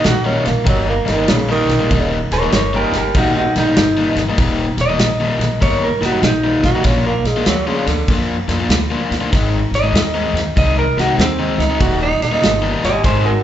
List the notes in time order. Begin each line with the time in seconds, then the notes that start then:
Already playing: D#3 G3 A#3 D#4
0.04 A#1 F#4, snare, ride
0.25 D#3 G3 A#3 C#4 D#4
0.46 A#1 A#3, snare, ride
0.65 G1 D#3 G3 A#3 D#4, kick, ride
0.69 F#3
0.89 A#3
1.05 G1 D#3 G3 A#3 D#4, snare, ride
1.10 D#3
1.17 D#3 G3 A#3 D#4
1.28 A#1 C#3, snare, ride
1.49 D#3 G3 A#3 D#4
1.69 A#1, snare, ride
1.79 D#3 G3 A#3 D#4
1.90 D#1 D#3 G3 A#3 D#4, kick, ride
2.31 D#1 A#4 C#5, snare, ride
2.42 D#3 G3 A#3 D#4
2.52 G1 A#4 C#5, snare, ride
2.73 D#3 G3 A#3 D#4 G4 A#4
2.92 G1 G4, snare, ride
2.98 A#4
3.15 A#1 D#3 G3 A#3 D#4 F#4, kick, ride
3.37 D#4 F#4
3.56 A#1 D#3 G3 A#3 D#4, snare, ride
3.66 D#3 G3 A#3 D#4
3.76 G1, snare, ride
3.97 D#3 G3 A#3 D#4
4.16 G1, snare, ride
4.29 D#3 G3 A#3 D#4
4.38 D#1 D#3 G3 A#3 D#4, kick, ride
4.77 D#1 D#5, snare, ride
4.89 D#3 G3 A#3 D#4
4.98 A#1, snare, ride
5.20 D#3 G3 A#3 D#4
5.39 A#1, snare, ride
5.61 G1 D#3 G3 A#3 D#4 C#5, kick, ride
5.84 A#4
6.01 G1 D#3 G3 A#3 D#4, snare, ride
6.05 F#4
6.12 D#3 G3 A#3 D#4
6.22 A#1 D#4, snare, ride
6.44 D#3 G3 A#3 D#4
6.63 A#1 F#4, kick, snare, ride
6.75 D#3 G3 A#3 D#4
6.84 A#1 F3 A#3 C#4 D4 F4, kick, snare, ride
7.06 A#3
7.24 A#1 G#3, snare, ride
7.36 F3 A#3 D4 F4
7.46 D2 F#3, snare, ride
7.67 C#3 F3 A#3 D4 F4
7.87 D2 D3, snare, ride
8.08 F2 F3 A#3 D4 F4, kick, ride
8.48 F2 F3 A#3 D4 F4, snare, ride
8.59 F3 A#3 D4 F4
8.69 D2, snare, ride
8.91 F3 A#3 D4 F4
9.10 D2, snare, ride
9.21 F3 A#3 D4 F4
9.31 G#1 D#3 G#3 C4 D#4, kick, snare, ride
9.71 G#1 D#5, snare, ride
9.83 D#3 G#3 C4 D#4
9.92 D#2, snare, ride
10.14 D#3 G#3 C4 D#4
10.33 D#2, snare, ride
10.56 C2 D#3 G#3 C4 D#4 D#5, kick, ride
10.79 A#4
10.97 C2 D#3 G#3 C4 D#4 F#4, snare, ride
11.08 D#3 G#3 C4 D#4
11.18 D#2 C4, snare, ride
11.39 D#3 G#3 C4 D#4
11.58 C#2 D#4, snare, ride
11.70 D#3 G#3 C4 D#4
11.80 D#1 D#3 G3 A#3 D#4 F#4, kick, ride
12.02 D#4
12.21 D#1 D#4, snare, ride
12.32 D#3 G3 A#3 D#4
12.42 G1, snare, ride
12.62 D#3 G3 A#3 D#4
12.83 G1 G4 D#5, snare, ride
13.04 G#1 D#3 G#3 C4 D#4 G#4 C5, kick, snare, ride
13.25 F#4 A#4